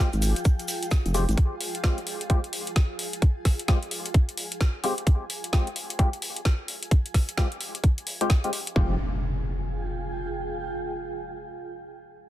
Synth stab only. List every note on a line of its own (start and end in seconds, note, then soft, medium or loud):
1.14 1.24 G#3 medium
1.14 1.24 C4 medium
1.14 1.24 F4 medium
1.14 1.24 G4 medium
1.84 1.99 G#3 medium
1.84 1.99 C4 medium
1.84 1.99 F4 medium
1.84 1.99 G4 medium
2.30 2.40 G#3 loud
2.30 2.40 C4 medium
2.30 2.40 F4 medium
2.30 2.40 G4 loud
3.68 3.78 G#3 loud
3.68 3.78 C4 medium
3.68 3.78 F4 medium
3.68 3.78 G4 loud
4.84 4.93 G#3 medium
4.84 4.93 C4 medium
4.84 4.93 F4 medium
4.84 4.93 G4 medium
5.53 5.68 G#3 medium
5.53 5.68 C4 medium
5.53 5.68 F4 medium
5.53 5.68 G4 medium
5.99 6.09 G#3 loud
5.99 6.09 C4 medium
5.99 6.09 F4 medium
5.99 6.09 G4 loud
7.38 7.47 G#3 loud
7.38 7.47 C4 medium
7.38 7.47 F4 medium
7.38 7.47 G4 loud
8.21 8.31 G#3 medium
8.21 8.31 C4 medium
8.21 8.31 F4 medium
8.21 8.31 G4 loud
8.44 8.50 G#3 medium
8.44 8.50 C4 medium
8.44 8.50 F4 medium
8.44 8.50 G4 medium
8.76 8.94 G#3 medium
8.76 8.94 C4 medium
8.76 8.94 F4 medium
8.76 8.94 G4 medium